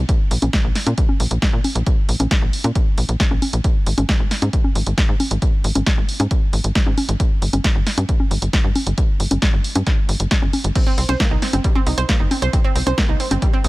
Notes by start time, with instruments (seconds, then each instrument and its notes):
0.09 kick, closed hi-hat
0.31 analog synth bass A#1, open hi-hat
0.42 analog synth bass A#1, closed hi-hat, high conga
0.53 kick, snare, closed hi-hat
0.64 analog synth bass A#1
0.75 snare, open hi-hat
0.87 analog synth bass A#2, closed hi-hat, high conga
0.98 kick, closed hi-hat
1.09 high conga
1.20 analog synth bass A#1, open hi-hat
1.31 analog synth bass A#1, closed hi-hat
1.42 kick, snare, closed hi-hat
1.53 analog synth bass A#2
1.64 open hi-hat, high conga
1.75 analog synth bass A#1, closed hi-hat
1.86 kick, closed hi-hat
2.09 analog synth bass A#1, open hi-hat
2.20 analog synth bass A#1, closed hi-hat, high conga
2.31 kick, snare, closed hi-hat
2.42 analog synth bass A#1
2.53 open hi-hat
2.64 analog synth bass A#2, closed hi-hat, high conga
2.75 kick, closed hi-hat
2.98 analog synth bass A#1, open hi-hat
3.09 analog synth bass A#1, closed hi-hat
3.20 kick, snare, closed hi-hat
3.31 analog synth bass A#1, high conga
3.42 open hi-hat, high conga
3.53 analog synth bass A#1, closed hi-hat
3.64 kick, closed hi-hat
3.86 analog synth bass G#1, open hi-hat
3.98 analog synth bass G#1, closed hi-hat, high conga
4.09 kick, snare, closed hi-hat
4.20 analog synth bass G#1
4.31 snare, open hi-hat
4.42 analog synth bass G#2, closed hi-hat, high conga
4.53 kick, closed hi-hat
4.64 high conga
4.75 analog synth bass G#1, open hi-hat
4.87 analog synth bass G#1, closed hi-hat
4.98 kick, snare, closed hi-hat
5.09 analog synth bass G#2
5.20 open hi-hat, high conga
5.31 analog synth bass G#1, closed hi-hat
5.42 kick, closed hi-hat
5.64 analog synth bass G#1, open hi-hat
5.75 analog synth bass G#1, closed hi-hat, high conga
5.86 kick, snare, closed hi-hat
5.98 analog synth bass G#1
6.09 open hi-hat
6.20 analog synth bass G#2, closed hi-hat, high conga
6.31 kick, closed hi-hat
6.53 analog synth bass G#1, open hi-hat
6.64 analog synth bass G#1, closed hi-hat
6.75 kick, snare, closed hi-hat
6.86 analog synth bass G#2, high conga
6.98 open hi-hat, high conga
7.09 analog synth bass G#1, closed hi-hat
7.20 kick, closed hi-hat
7.42 analog synth bass G1, open hi-hat
7.53 analog synth bass G1, closed hi-hat, high conga
7.64 kick, snare, closed hi-hat
7.75 analog synth bass G1
7.87 snare, open hi-hat
7.98 analog synth bass G2, closed hi-hat, high conga
8.09 kick, closed hi-hat
8.20 high conga
8.31 analog synth bass G1, open hi-hat
8.42 analog synth bass G1, closed hi-hat
8.53 kick, snare, closed hi-hat
8.64 analog synth bass G2
8.75 open hi-hat, high conga
8.87 analog synth bass G1, closed hi-hat
8.98 kick, closed hi-hat
9.20 analog synth bass G1, open hi-hat
9.31 analog synth bass G1, closed hi-hat, high conga
9.42 kick, snare, closed hi-hat
9.53 analog synth bass G1
9.64 open hi-hat
9.75 analog synth bass G2, closed hi-hat, high conga
9.87 kick, snare, closed hi-hat
10.09 analog synth bass G1, open hi-hat
10.20 analog synth bass G1, closed hi-hat
10.31 kick, snare, closed hi-hat
10.42 analog synth bass G1, high conga
10.53 open hi-hat, high conga
10.64 analog synth bass G1, closed hi-hat
10.75 synth arpeggio sound C4, kick, closed hi-hat, crash
10.87 synth arpeggio sound C4
10.98 analog synth bass C2, synth arpeggio sound C4, open hi-hat
11.09 analog synth bass C2, synth arpeggio sound C5, closed hi-hat, high conga
11.20 synth arpeggio sound A#3, kick, snare, closed hi-hat
11.31 analog synth bass C2, synth arpeggio sound D#4
11.42 synth arpeggio sound C4, snare, open hi-hat
11.53 analog synth bass G1, synth arpeggio sound C4, closed hi-hat, high conga
11.64 synth arpeggio sound G3, kick, closed hi-hat
11.75 synth arpeggio sound C4, high conga
11.87 analog synth bass C2, synth arpeggio sound D#4, open hi-hat
11.98 analog synth bass C2, synth arpeggio sound C5, closed hi-hat
12.09 synth arpeggio sound A#3, kick, snare, closed hi-hat
12.20 analog synth bass G1, synth arpeggio sound D#4
12.31 synth arpeggio sound C4, open hi-hat, high conga
12.42 analog synth bass C2, synth arpeggio sound C5, closed hi-hat
12.53 synth arpeggio sound C4, kick, closed hi-hat
12.64 synth arpeggio sound C4
12.75 analog synth bass C2, synth arpeggio sound C4, open hi-hat
12.87 analog synth bass C2, synth arpeggio sound C5, closed hi-hat, high conga
12.98 synth arpeggio sound A#3, kick, snare, closed hi-hat
13.09 analog synth bass C2, synth arpeggio sound D#4
13.20 synth arpeggio sound C4, open hi-hat
13.31 analog synth bass G1, synth arpeggio sound C4, closed hi-hat, high conga
13.42 synth arpeggio sound G3, kick, closed hi-hat
13.53 synth arpeggio sound C4
13.64 analog synth bass C2, synth arpeggio sound D#4, open hi-hat